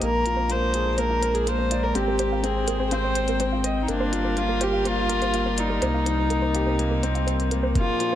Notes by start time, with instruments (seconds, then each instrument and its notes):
0.01 sub bass A#1, string quartet G#3 A#3 D4, grand piano A#3, viola A#4, synth arpeggio sound C5, closed hi-hat
0.25 grand piano F4, synth arpeggio sound A#4, closed hi-hat
0.37 synth arpeggio sound C5
0.49 grand piano A#3, viola C5, synth arpeggio sound F5, closed hi-hat
0.62 synth arpeggio sound C5
0.74 grand piano G#4, closed hi-hat
0.86 synth arpeggio sound A#4
0.92 viola C5
0.98 grand piano A#3, viola A#4, synth arpeggio sound C5, closed hi-hat
1.10 synth arpeggio sound F5
1.22 grand piano A#4, synth arpeggio sound C5, closed hi-hat
1.34 viola G#4, closed hi-hat
1.47 grand piano A#3, synth arpeggio sound A#4, viola C5, closed hi-hat
1.59 synth arpeggio sound C5
1.71 grand piano D5, synth arpeggio sound F5, closed hi-hat
1.83 viola A#4, synth arpeggio sound C5
1.94 sub bass G#1, string quartet C4 G5, grand piano C4, viola G4, closed hi-hat
2.08 synth arpeggio sound A#4
2.19 grand piano G4, synth arpeggio sound C5, closed hi-hat
2.32 synth arpeggio sound F5
2.44 grand piano C4, viola G#4, synth arpeggio sound C5, closed hi-hat
2.68 grand piano G#4, synth arpeggio sound A#4, closed hi-hat
2.80 synth arpeggio sound C5
2.91 grand piano C4, viola C5, synth arpeggio sound F5, closed hi-hat
3.04 synth arpeggio sound C5
3.15 grand piano C5, closed hi-hat
3.28 synth arpeggio sound A#4, closed hi-hat
3.40 grand piano C4, synth arpeggio sound C5, closed hi-hat
3.53 synth arpeggio sound F5
3.64 synth arpeggio sound C5, grand piano D#5, closed hi-hat
3.82 viola D#4
3.88 sub bass G1, string quartet G3 D4 F4 A#4, grand piano A#3, viola D4, synth arpeggio sound A#4, closed hi-hat
4.00 synth arpeggio sound C5
4.12 grand piano F4, synth arpeggio sound F5, closed hi-hat
4.25 synth arpeggio sound C5
4.37 grand piano A#3, viola F4, closed hi-hat
4.49 synth arpeggio sound A#4
4.61 grand piano G4, viola G4, synth arpeggio sound C5, closed hi-hat
4.73 synth arpeggio sound F5
4.85 grand piano A#3, viola F4, synth arpeggio sound C5, closed hi-hat
5.09 grand piano A#4, synth arpeggio sound A#4, closed hi-hat
5.22 synth arpeggio sound C5, closed hi-hat
5.34 grand piano A#3, synth arpeggio sound F5, closed hi-hat
5.46 synth arpeggio sound C5
5.58 viola D#4, grand piano D5, closed hi-hat
5.70 synth arpeggio sound A#4
5.82 sub bass C2, string quartet C3 A#3 D#4, grand piano A#3, synth arpeggio sound C5, closed hi-hat
5.94 synth arpeggio sound F5
6.06 grand piano D#4, synth arpeggio sound C5, closed hi-hat
6.30 grand piano A#3, synth arpeggio sound A#4, closed hi-hat
6.42 synth arpeggio sound C5
6.55 grand piano G4, synth arpeggio sound F5, closed hi-hat
6.67 synth arpeggio sound C5
6.79 grand piano A#3, closed hi-hat
6.91 synth arpeggio sound A#4
7.03 grand piano C4, synth arpeggio sound C5, closed hi-hat
7.15 synth arpeggio sound F5, closed hi-hat
7.27 synth arpeggio sound C5, grand piano C5, closed hi-hat
7.40 closed hi-hat
7.51 grand piano A#3, synth arpeggio sound A#4, closed hi-hat
7.63 synth arpeggio sound C5
7.75 string quartet A#2 F3 D4 G#4, grand piano A#3, viola F4, kick, closed hi-hat
8.00 grand piano F4, synth arpeggio sound A#4, closed hi-hat